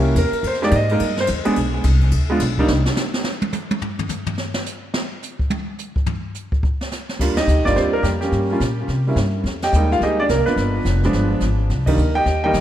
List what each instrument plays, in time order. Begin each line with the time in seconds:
Already playing: upright bass C2, grand piano A#3 C#4 E4 G4
0.15 upright bass E2, grand piano A#4, hi-hat pedal, ride
0.32 muted upright bass stroke, ride
0.43 upright bass F2, ride
0.47 grand piano C5
0.54 snare
0.62 grand piano G#3 A#3 D#4 G4 D5, snare
0.71 upright bass G#2, hi-hat pedal, ride
0.76 grand piano D#5
0.89 grand piano G#3 A#3 D#4 A#4, ride
1.00 upright bass G2, ride
1.17 grand piano C5, snare
1.27 upright bass D#2, hi-hat pedal, ride
1.45 grand piano G#3 B3 D4 G#4, muted upright bass stroke, ride
1.56 upright bass B1, ride
1.84 upright bass C2, hi-hat pedal, ride
2.01 kick, ride
2.11 upright bass D2, ride
2.30 grand piano G#3 B3 D4 F4
2.40 upright bass B1, snare, hi-hat pedal, ride
2.58 grand piano G3 A#3 D4 D#4, kick
2.68 upright bass C2, snare
2.86 snare
2.96 snare, hi-hat pedal
3.14 snare
3.24 snare
3.42 high tom
3.52 hi-hat pedal, high tom
3.71 high tom
3.82 floor tom
3.99 floor tom
4.09 floor tom, hi-hat pedal
4.26 floor tom
4.38 snare
4.54 snare
4.66 hi-hat pedal
4.94 snare
5.23 hi-hat pedal
5.39 kick
5.50 high tom
5.78 hi-hat pedal
5.96 kick
6.06 floor tom
6.34 hi-hat pedal
6.52 kick
6.63 kick
6.81 snare
6.91 snare, hi-hat pedal
7.09 snare
7.19 upright bass D#2, grand piano G3 A#3 D4 F4, brush sweep, kick, snare, crash
7.37 grand piano D#4 G4 D#5, snare, ride
7.47 upright bass D2, hi-hat pedal
7.57 upright bass A#1
7.65 upright bass G1, grand piano G3 A#3 D4 F4 D5, kick, snare
7.76 upright bass D#2, grand piano C4 F4 G4 C5, brush sweep, snare
7.93 grand piano A#3 A#4
8.03 upright bass F2, grand piano G3 G4, snare, hi-hat pedal
8.21 grand piano G3 A#3 C#4 G4, snare
8.32 upright bass G2, brush sweep, snare
8.51 grand piano G3 A#3 C#4 F4
8.60 upright bass A#2, snare, hi-hat pedal
8.88 upright bass C3, brush sweep, snare
9.07 grand piano G3 A#3 C#4 E4
9.16 upright bass G2, snare, hi-hat pedal
9.44 upright bass F2, brush sweep, snare
9.62 grand piano G4 D#5 G5, snare, ride
9.73 upright bass D#2, grand piano G3 G#3 A#3 D#4, hi-hat pedal
9.92 grand piano F4 F5, snare
10.00 upright bass D2, grand piano D#4 G4 G#4 D#5, brush sweep, snare
10.20 grand piano D4 D5
10.29 upright bass C2, grand piano A#3 A#4, snare, hi-hat pedal
10.38 upright bass G#1
10.46 upright bass F1, grand piano B3 D4 F4 B4, snare
10.56 upright bass G1, brush sweep, snare
10.85 upright bass F1, snare, hi-hat pedal
11.03 grand piano F3 G#3 B3 D4, snare
11.13 upright bass G1, brush sweep, snare
11.40 upright bass G#1, snare, hi-hat pedal
11.70 upright bass C2, brush sweep, snare
11.86 grand piano D#3 G3 A#3 D4 D#4 A#4 D#5, kick, crash
11.97 upright bass D2, hi-hat pedal
12.15 grand piano G4 D#5 G5
12.25 upright bass D#2, brush sweep, snare
12.44 grand piano D#3 G3 A#3 D#4 G4 D#5 G5
12.53 upright bass G2, snare, hi-hat pedal